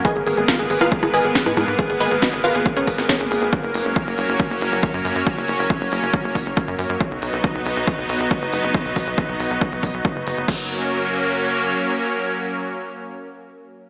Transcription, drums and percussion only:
0.05 kick loud
0.05 closed hi-hat medium
0.16 closed hi-hat soft
0.27 open hi-hat loud
0.38 closed hi-hat soft
0.48 kick loud
0.48 snare loud
0.48 closed hi-hat soft
0.59 closed hi-hat soft
0.70 open hi-hat medium
0.81 closed hi-hat soft
0.81 percussion blips medium
0.92 kick loud
0.92 closed hi-hat soft
1.03 closed hi-hat soft
1.03 percussion blips medium
1.14 open hi-hat loud
1.25 closed hi-hat soft
1.35 kick loud
1.35 snare loud
1.35 closed hi-hat medium
1.46 closed hi-hat soft
1.46 percussion blips medium
1.57 open hi-hat medium
1.57 percussion blips medium
1.68 closed hi-hat soft
1.79 kick loud
1.79 closed hi-hat soft
1.90 closed hi-hat soft
2.01 open hi-hat loud
2.12 closed hi-hat soft
2.22 kick loud
2.22 snare loud
2.22 closed hi-hat soft
2.33 closed hi-hat soft
2.44 open hi-hat medium
2.55 closed hi-hat soft
2.66 kick loud
2.66 closed hi-hat soft
2.77 closed hi-hat soft
2.87 kick medium
2.87 open hi-hat loud
2.98 snare soft
2.98 closed hi-hat soft
3.09 kick loud
3.09 snare loud
3.09 closed hi-hat soft
3.20 closed hi-hat soft
3.31 open hi-hat medium
3.42 closed hi-hat soft
3.53 kick loud
3.53 closed hi-hat soft
3.64 closed hi-hat soft
3.74 open hi-hat loud
3.85 closed hi-hat soft
3.96 kick loud
3.96 closed hi-hat soft
4.07 closed hi-hat soft
4.18 open hi-hat medium
4.29 closed hi-hat soft
4.40 kick loud
4.40 closed hi-hat soft
4.51 closed hi-hat soft
4.61 open hi-hat loud
4.72 closed hi-hat soft
4.83 kick loud
4.83 closed hi-hat soft
4.94 closed hi-hat soft
5.05 open hi-hat medium
5.16 closed hi-hat soft
5.27 kick loud
5.27 closed hi-hat soft
5.38 closed hi-hat soft
5.48 open hi-hat loud
5.59 closed hi-hat soft
5.70 kick loud
5.70 closed hi-hat soft
5.81 closed hi-hat soft
5.92 open hi-hat medium
6.03 closed hi-hat soft
6.14 kick loud
6.14 closed hi-hat soft
6.24 closed hi-hat soft
6.35 kick medium
6.35 open hi-hat loud
6.46 closed hi-hat soft
6.57 kick loud
6.57 closed hi-hat soft
6.68 closed hi-hat soft
6.79 open hi-hat medium
6.90 closed hi-hat soft
7.01 kick loud
7.01 closed hi-hat medium
7.11 closed hi-hat soft
7.22 open hi-hat medium
7.33 closed hi-hat soft
7.44 kick loud
7.44 closed hi-hat soft
7.55 closed hi-hat soft
7.66 open hi-hat medium
7.77 closed hi-hat medium
7.87 kick loud
7.87 closed hi-hat medium
7.98 closed hi-hat soft
8.09 open hi-hat medium
8.20 closed hi-hat medium
8.31 kick loud
8.31 closed hi-hat soft
8.42 closed hi-hat soft
8.53 open hi-hat medium
8.64 closed hi-hat medium
8.74 kick loud
8.74 closed hi-hat medium
8.85 closed hi-hat soft
8.96 kick medium
8.96 open hi-hat medium
9.07 closed hi-hat medium
9.18 kick loud
9.18 closed hi-hat soft
9.29 closed hi-hat soft
9.40 open hi-hat medium
9.51 closed hi-hat medium
9.61 kick loud
9.61 closed hi-hat medium
9.72 closed hi-hat soft
9.83 kick medium
9.83 open hi-hat medium
9.94 closed hi-hat soft
10.05 kick loud
10.05 closed hi-hat medium
10.16 closed hi-hat soft
10.27 open hi-hat medium
10.38 closed hi-hat soft
10.48 kick loud
10.48 crash medium

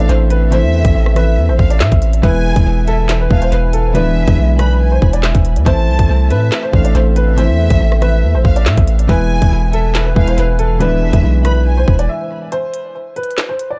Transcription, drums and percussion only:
0.09 closed hi-hat medium
0.30 closed hi-hat medium
0.52 closed hi-hat medium
0.85 kick loud
0.85 closed hi-hat medium
1.06 cross-stick medium
1.16 cross-stick medium
1.16 closed hi-hat medium
1.59 kick medium
1.70 closed hi-hat medium
1.80 snare loud
1.80 clap medium
1.92 kick loud
1.92 closed hi-hat medium
2.02 closed hi-hat medium
2.13 closed hi-hat medium
2.23 kick loud
2.23 closed hi-hat medium
2.56 kick loud
2.56 closed hi-hat medium
2.88 closed hi-hat medium
3.09 snare loud
3.09 clap medium
3.09 closed hi-hat medium
3.31 kick loud
3.42 closed hi-hat medium
3.52 closed hi-hat medium
3.73 closed hi-hat medium
3.95 closed hi-hat medium
4.28 kick loud
4.28 closed hi-hat medium
4.59 cross-stick medium
4.59 closed hi-hat medium
5.02 kick loud
5.13 closed hi-hat medium
5.23 snare loud
5.23 clap medium
5.35 kick loud
5.35 closed hi-hat medium
5.45 closed hi-hat medium
5.56 closed hi-hat medium
5.66 kick loud
5.66 closed hi-hat medium
5.99 kick loud
5.99 closed hi-hat loud
6.30 closed hi-hat medium
6.52 snare loud
6.52 clap loud
6.52 closed hi-hat medium
6.73 kick loud
6.85 closed hi-hat medium
6.95 closed hi-hat medium
7.16 closed hi-hat medium
7.38 closed hi-hat medium
7.70 kick loud
7.70 closed hi-hat loud
7.92 cross-stick medium
8.02 cross-stick medium
8.02 closed hi-hat medium
8.45 kick loud
8.56 closed hi-hat medium
8.66 snare loud
8.66 clap medium
8.77 kick loud
8.77 closed hi-hat medium
8.87 closed hi-hat medium
8.99 closed hi-hat medium
9.09 kick loud
9.09 closed hi-hat medium
9.42 kick loud
9.42 closed hi-hat medium
9.73 closed hi-hat medium
9.95 snare loud
9.95 clap loud
9.95 closed hi-hat medium
10.16 kick medium
10.28 closed hi-hat medium
10.38 closed hi-hat medium
10.59 closed hi-hat medium
10.81 closed hi-hat medium
11.13 kick loud
11.13 closed hi-hat medium
11.45 cross-stick medium
11.45 closed hi-hat medium
11.88 kick loud
11.99 closed hi-hat medium
12.52 closed hi-hat medium
12.74 closed hi-hat medium
13.16 closed hi-hat soft
13.23 closed hi-hat soft
13.31 closed hi-hat medium
13.38 snare loud
13.38 clap medium
13.59 closed hi-hat medium

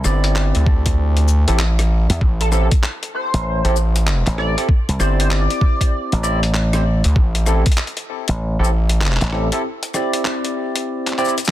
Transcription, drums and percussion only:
0.04 cross-stick soft
0.04 shaker medium
0.24 closed hi-hat medium
0.35 clap loud
0.55 closed hi-hat soft
0.66 kick loud
0.86 kick medium
0.86 closed hi-hat medium
1.17 closed hi-hat soft
1.28 shaker medium
1.48 closed hi-hat medium
1.59 clap loud
1.79 cross-stick soft
1.79 closed hi-hat medium
2.10 closed hi-hat medium
2.21 kick loud
2.41 closed hi-hat medium
2.52 cross-stick soft
2.52 shaker medium
2.71 kick loud
2.71 closed hi-hat medium
2.83 clap loud
3.03 closed hi-hat soft
3.34 closed hi-hat medium
3.65 closed hi-hat soft
3.76 shaker medium
3.96 closed hi-hat medium
4.07 clap loud
4.27 clap soft
4.27 closed hi-hat soft
4.38 cross-stick soft
4.58 closed hi-hat medium
4.69 kick loud
4.89 closed hi-hat soft
5.00 cross-stick soft
5.00 shaker medium
5.20 closed hi-hat medium
5.31 clap loud
5.50 closed hi-hat soft
5.61 kick loud
5.81 kick medium
5.81 closed hi-hat medium
6.12 closed hi-hat soft
6.24 shaker medium
6.43 closed hi-hat medium
6.54 clap loud
6.73 cross-stick medium
6.73 closed hi-hat soft
7.04 closed hi-hat medium
7.16 kick loud
7.35 closed hi-hat medium
7.46 cross-stick soft
7.46 shaker medium
7.66 kick loud
7.66 closed hi-hat medium
7.72 closed hi-hat medium
7.77 clap loud
7.77 closed hi-hat soft
7.87 closed hi-hat soft
7.97 closed hi-hat soft
8.28 closed hi-hat medium
8.64 shaker medium
8.89 closed hi-hat medium
9.01 clap loud
9.06 clap medium
9.11 clap medium
9.16 clap medium
9.21 clap soft
9.21 closed hi-hat medium
9.24 clap soft
9.27 clap soft
9.30 cross-stick soft
9.30 clap soft
9.52 closed hi-hat medium
9.83 closed hi-hat medium
9.94 cross-stick soft
9.94 shaker medium
10.13 closed hi-hat medium
10.25 clap loud
10.45 closed hi-hat soft
10.76 closed hi-hat medium
11.07 clap soft
11.07 closed hi-hat soft
11.13 clap soft
11.18 clap soft
11.18 shaker soft
11.25 clap soft
11.25 shaker soft
11.28 shaker soft
11.38 closed hi-hat medium
11.38 shaker soft
11.38 shaker medium
11.45 shaker medium

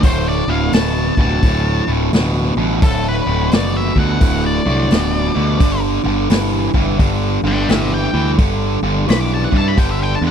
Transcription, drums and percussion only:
0.03 kick loud
0.03 open hi-hat medium
0.73 snare loud
0.73 open hi-hat medium
1.17 kick medium
1.42 kick loud
1.42 open hi-hat soft
2.13 snare loud
2.13 open hi-hat medium
2.82 kick loud
2.82 open hi-hat medium
3.51 snare loud
3.51 open hi-hat medium
3.96 kick medium
4.21 kick loud
4.21 open hi-hat medium
4.90 snare loud
4.90 open hi-hat medium
5.60 kick loud
5.60 open hi-hat medium
6.30 snare loud
6.30 open hi-hat medium
6.74 kick medium
6.99 kick loud
6.99 open hi-hat medium
7.69 snare loud
7.69 open hi-hat soft
8.39 kick loud
8.39 open hi-hat medium
9.09 snare loud
9.09 open hi-hat medium
9.52 kick medium
9.78 kick loud
9.78 open hi-hat medium

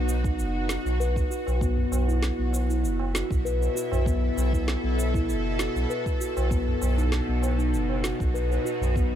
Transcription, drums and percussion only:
0.08 tabla tin medium
0.08 shaker medium
0.24 kick loud
0.24 shaker soft
0.39 shaker soft
0.69 snare medium
0.69 shaker medium
0.85 tabla na soft
0.85 shaker soft
1.01 shaker soft
1.16 kick loud
1.16 shaker soft
1.31 shaker medium
1.47 tabla na medium
1.47 shaker soft
1.61 kick loud
1.61 shaker soft
1.77 tabla ge medium
1.92 tabla na medium
1.92 shaker medium
2.09 shaker soft
2.23 snare medium
2.23 shaker soft
2.53 tabla na medium
2.53 tabla tin medium
2.53 shaker medium
2.69 tabla tin soft
2.69 shaker soft
2.85 shaker soft
2.99 tabla na medium
2.99 tabla tin medium
3.15 snare medium
3.15 shaker medium
3.31 kick loud
3.31 shaker soft
3.46 shaker soft
3.61 tabla tin medium
3.61 shaker soft
3.77 shaker medium
3.92 tabla na medium
3.92 tabla ge medium
3.92 shaker soft
4.06 kick loud
4.06 shaker soft
4.21 tabla tin soft
4.37 tabla na medium
4.37 shaker medium
4.53 kick medium
4.53 shaker soft
4.67 snare medium
4.67 tabla na soft
4.67 shaker soft
4.98 tabla tin medium
4.98 shaker medium
5.14 kick loud
5.14 shaker soft
5.29 shaker soft
5.59 snare medium
5.59 shaker medium
5.75 tabla na soft
5.75 shaker soft
5.90 shaker soft
6.06 kick medium
6.06 shaker soft
6.21 shaker medium
6.37 tabla na medium
6.37 shaker soft
6.51 kick loud
6.51 shaker soft
6.68 tabla ge medium
6.82 tabla na medium
6.82 shaker medium
6.98 shaker soft
7.12 snare medium
7.12 shaker soft
7.42 tabla na medium
7.42 tabla tin medium
7.42 shaker medium
7.60 shaker soft
7.74 shaker soft
7.89 tabla na medium
7.89 tabla tin medium
8.04 snare medium
8.04 shaker medium
8.20 kick loud
8.20 shaker soft
8.36 shaker soft
8.50 tabla tin medium
8.50 shaker soft
8.66 shaker medium
8.82 tabla na medium
8.82 tabla ge medium
8.82 shaker soft
8.96 kick loud
8.96 shaker soft

